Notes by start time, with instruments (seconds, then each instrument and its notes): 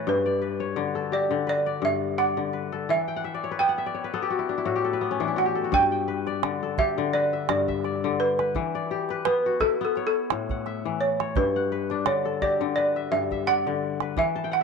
Already playing: kora A2 E3 B3 B4 C#5 E5 F#5
0.07 kora G2, balafon B4
0.26 kora D5
0.42 kora B4
0.60 kora C#5
0.76 kora D3
0.95 kora A4
1.12 kora G4, balafon D5
1.31 kora D3
1.47 kora B4, balafon D5
1.66 kora D5
1.82 kora G2, balafon E5
2.18 kora D5, balafon F#5
2.37 kora D3
2.53 kora B4
2.72 kora A4
2.89 kora E3, balafon E5
3.08 kora G5
3.16 kora F#5
3.24 kora E5
3.34 kora D5
3.44 kora C#5
3.51 kora B4
3.59 kora B3 G5, balafon G5
3.69 kora F#5
3.78 kora E5
3.86 kora D5
3.94 kora C#5
4.04 kora B4
4.14 kora B3 A4
4.22 kora G4
4.30 kora F#4
4.39 kora E4
4.49 kora D4
4.58 kora E4
4.65 kora A2 F#4
4.76 kora G4
4.84 kora A4
4.93 kora B4
5.01 kora B3
5.11 kora C#4
5.20 kora E3 D4
5.28 kora E4
5.36 kora F#4, balafon F#5
5.45 kora G4
5.55 kora A4
5.64 kora F#4
5.72 kora G2, balafon G5, calabash thump
5.92 kora G5
6.08 kora B4
6.27 kora D5, calabash click
6.43 kora D3, calabash click
6.63 kora A4
6.78 kora G4, balafon E5, calabash thump, calabash click
6.98 kora D3
7.13 kora B4, balafon D5, calabash click
7.33 kora E5
7.49 kora G2, balafon D5, calabash click
7.68 kora E5, calabash thump
7.84 kora D5, calabash click
8.04 kora D3
8.20 balafon B4
8.39 kora B4, calabash click
8.55 kora E3, calabash thump
8.75 kora D5
8.91 kora G4
9.09 kora B4, calabash click
9.25 kora B3, balafon B4, calabash click
9.46 kora F#4
9.60 kora E4, balafon A4, calabash thump, calabash click
9.81 kora B3, balafon A4
9.96 kora C#5, calabash click
10.07 balafon A4
10.30 kora A2, calabash click
10.49 kora F#5, calabash thump
10.66 kora E5, calabash click
10.85 kora E3
11.01 balafon C#5
11.20 kora C#5, calabash click
11.36 kora G2, balafon B4, calabash thump
11.56 kora F#5
11.72 kora B4
11.90 kora D4, calabash click
12.06 kora D3, balafon C#5, calabash click
12.25 kora A4
12.42 kora G4, balafon D5, calabash thump, calabash click
12.61 kora D3
12.76 kora B4, balafon D5, calabash click
12.96 kora E5
13.12 kora G2, balafon E5
13.31 kora E5, calabash thump
13.47 kora D5, balafon F#5, calabash click
13.67 kora D3
14.00 kora B4, calabash click
14.17 kora E3, balafon E5, calabash thump
14.36 kora A5
14.44 kora G5
14.51 kora F#5, balafon F#5